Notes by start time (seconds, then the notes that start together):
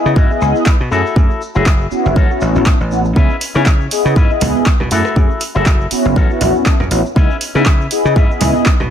Already playing: B3 E4 G#4 D#5
0.06 C#3, shaker
0.16 G#2 C#4 E4 F#4, kick, shaker
0.30 B3 E4 G#4 D#5, shaker
0.41 C#2, muted clean electric guitar stroke, shaker
0.56 shaker
0.66 B3 D#4 E4 B4, kick, clap, shaker
0.80 B2, shaker
0.91 F#2 A3 C#4 E4 F#4 G#4 A4, shaker
1.06 shaker
1.16 F#2 A3 C#4 E4 G#4, kick, shaker
1.30 shaker
1.42 shaker
1.55 F#1 A3 C#4 E4 F#4 G#4, shaker
1.66 kick, clap
1.81 shaker
1.91 B3 C#4 E4 F#4, muted slap bass stroke, shaker
2.06 F#1, high conga, shaker
2.16 A1 C#4 F#4 A4, kick, shaker
2.30 B3 C#4 E4 F#4, shaker
2.41 A1, muted clean electric guitar stroke, shaker
2.55 A1, shaker
2.66 B3 C#4 E4 A4, kick, clap, shaker
2.80 A1, shaker
2.91 B3 C#4 E4 F#4, muted clean electric guitar stroke, shaker
3.05 muted clean electric guitar stroke, shaker
3.16 C#2 B3 C#4 D#4 E4 G#4 B4, kick, shaker
3.30 shaker
3.41 open hi-hat, shaker
3.55 C#3 B3 C#4 D#4 E4 G#4 C#5, cross-stick, shaker
3.66 kick, clap, shaker
3.81 shaker
3.91 B3 E4 G#4 D#5, open hi-hat, shaker
4.05 C#3, shaker
4.16 G#2 C#4 E4 B4, kick, shaker
4.30 B3 E4 G#4 D#5, shaker
4.41 C#2, muted clean electric guitar stroke, open hi-hat, low conga, shaker
4.55 shaker
4.66 B3 D#4 E4 B4, kick, clap, shaker
4.80 B2, cross-stick, low conga, shaker
4.91 F#2 A3 C#4 E4 F#4 G#4 A4, open hi-hat, shaker
5.05 cross-stick, shaker
5.16 F#2 A3 C#4 E4 G#4, kick, shaker
5.31 shaker
5.40 open hi-hat, shaker
5.55 F#1 A3 C#4 E4 F#4 G#4 A4, shaker
5.66 kick, clap, shaker
5.81 shaker
5.91 B3 C#4 E4 F#4, muted slap bass stroke, open hi-hat, shaker
6.05 F#1, high conga, shaker
6.16 A1 C#4 F#4 A4, kick, shaker
6.30 B3 C#4 E4 F#4, shaker
6.41 A1, muted clean electric guitar stroke, open hi-hat, low conga, shaker
6.56 shaker
6.66 B3 C#4 E4 A4, kick, clap, shaker
6.80 F#2, cross-stick, low conga, shaker
6.91 A1 B3 C#4 E4 F#4, muted clean electric guitar stroke, open hi-hat, shaker
7.05 muted clean electric guitar stroke, shaker
7.16 C#2 B3 C#4 D#4 E4 G#4 B4, kick, shaker
7.31 shaker
7.41 open hi-hat, shaker
7.55 C#3 B3 C#4 D#4 E4 G#4 B4, cross-stick, shaker
7.66 kick, clap, shaker
7.81 shaker
7.91 B3 E4 G#4 D#5, open hi-hat, shaker
8.05 C#3, shaker
8.16 G#2 C#4 E4 B4, kick, shaker
8.30 B3 E4 G#4 D#5, shaker
8.41 C#2, muted clean electric guitar stroke, open hi-hat, low conga, shaker
8.55 shaker
8.66 B3 D#4 E4 B4, kick, clap, shaker
8.80 B2, cross-stick, low conga, shaker